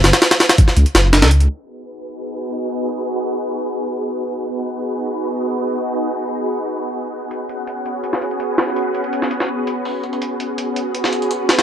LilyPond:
<<
  \new Staff \with { instrumentName = "String machine" } { \time 4/4 \key gis \minor \tempo 4 = 165 r1 | <b dis' fis' gis' b'>1~ | <b dis' fis' gis' b'>1 | <b dis' fis' gis' b'>1~ |
<b dis' fis' gis' b'>1 | <b cis' fis' gis' b'>1~ | <b cis' fis' gis' b'>1 | <b cis' fis' gis' b'>1 | }
  \new Staff \with { instrumentName = "Detuned saw bass" } { \clef bass \time 4/4 \key gis \minor fis,,16 r4. r16 cis,16 r16 fis,,8. cis,8. | r1 | r1 | r1 |
r1 | r1 | r1 | r1 | }
  \new DrumStaff \with { instrumentName = "Drums" } \drummode { \time 4/4 <hh sn>16 <hh sn>16 <hh sn>16 <hh sn>16 <hh sn>16 <hh sn>16 <hh bd>16 sn16 hh16 hh16 <hh sn>8 <hh sn>16 <hh sn>16 hh16 hh16 | r4 r4 r4 r4 | r4 r4 r4 r4 | r4 r4 r4 r4 |
r4 r4 r4 r4 | hh8 hh8 hh8 hh8 hh16 sn16 hh16 hh16 hh8 <hh sn>8 | hh8 hh16 hh16 hh16 sn16 hh16 sn16 r8 hh8 hho8 hh16 hh16 | hh8 hh8 hh8 hh8 hh16 sn16 hh16 hh16 hh8 <hh sn>16 <hh sn>16 | }
>>